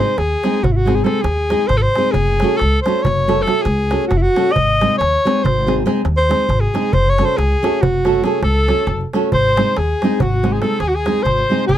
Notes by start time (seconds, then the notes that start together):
Already playing: G#3 C5
0.00 C4 D#4 G#4
0.08 darbuka tek
0.18 D#2 G#4, darbuka tek
0.43 G#3 C4 D#4 G#4, darbuka tek
0.54 darbuka tek
0.63 G#1 F#4, darbuka dum
0.72 E4
0.76 F#4
0.86 G#3 C4 D#4 G#4, darbuka tek
0.95 G#4
1.04 G#3 C4 D#4 G#4 A4, darbuka tek
1.15 darbuka tek
1.23 D#2 G#4, darbuka tek
1.50 G#3 C4 D#4 G#4, darbuka tek
1.59 darbuka tek
1.68 G#1 C5, darbuka tek, darbuka dum
1.77 A4
1.82 C5
1.96 G#3 C4 D#4 G#4, darbuka tek
2.06 darbuka tek
2.12 F#1 G#4, darbuka dum
2.28 darbuka tek
2.40 A3 C#4 F#4, darbuka tek
2.44 A4
2.50 darbuka tek
2.57 C#2 A4, darbuka tek
2.82 C5, darbuka tek
2.86 A3 C#4 F#4 A4
2.96 darbuka tek
3.02 F#1 C#5, darbuka dum
3.28 A3 C#4 F#4 A4, darbuka tek
3.42 A4
3.46 A3 C#4 F#4 A4, darbuka tek
3.57 darbuka tek
3.62 C#2 G#4, darbuka tek
3.91 A3 C#4 F#4 A4, darbuka tek
4.01 darbuka tek
4.07 F#1 F#4, darbuka tek, darbuka dum
4.17 E4
4.22 F#4
4.36 A3 C#4 F#4 A4, darbuka tek
4.47 darbuka tek
4.52 D#5, darbuka dum
4.56 G#1
4.69 darbuka tek
4.81 G#3 C4 D#4 G#4, darbuka tek
4.92 darbuka tek
4.98 D#2 C#5, darbuka tek
5.25 G#3 C4 D#4 G#4, darbuka tek
5.37 darbuka tek
5.43 G#1 C5, darbuka dum
5.67 G#3 C4 D#4 G#4, darbuka tek
5.86 G#3 C4 D#4 G#4, darbuka tek
5.96 darbuka tek
6.05 D#2, darbuka tek
6.17 C5
6.29 G#3 C4 D#4 G#4, darbuka tek
6.40 darbuka tek
6.49 G#1, darbuka tek, darbuka dum
6.61 G#4
6.74 G#3 C4 D#4 G#4, darbuka tek
6.84 darbuka tek
6.93 F#1 C5, darbuka dum
7.06 C#5, darbuka tek
7.18 A3 C#4 F#4 A4, darbuka tek
7.25 C5, darbuka tek
7.37 C#2 G#4, darbuka tek
7.52 darbuka tek
7.63 A3 C#4 F#4 A4, darbuka tek
7.74 darbuka tek
7.82 F#1 F#4, darbuka dum
7.94 darbuka tek
8.05 A3 C#4 F#4 A4, darbuka tek
8.15 darbuka tek
8.24 A3 C#4 F#4 G#4 A4, darbuka tek
8.42 C#2 A4, darbuka tek
8.56 darbuka tek
8.68 A3 C#4 F#4 A4, darbuka tek
8.78 darbuka tek
8.87 F#1, darbuka tek, darbuka dum
9.01 darbuka tek
9.13 A3 C#4 F#4 A4, darbuka tek
9.23 darbuka tek
9.32 G#1 C5, darbuka dum
9.45 darbuka tek
9.57 G#3 C4 D#4 G#4, darbuka tek
9.68 darbuka tek
9.77 D#2 G#4, darbuka tek
10.02 G#3 C4 D#4 G#4, darbuka tek
10.11 darbuka tek
10.20 G#1 F#4, darbuka dum
10.43 G#3 C4 D#4 G#4, darbuka tek
10.52 G#4
10.61 G#3 C4 D#4 G#4 A4, darbuka tek
10.71 darbuka tek
10.79 D#2 G#4, darbuka tek
10.88 F#4
10.95 G#4
11.06 G#3 C4 D#4 G#4, darbuka tek
11.16 darbuka tek
11.23 G#1 C5, darbuka tek, darbuka dum
11.50 G#3 C4 D#4 G#4
11.60 darbuka tek
11.67 F#1 G#4, darbuka dum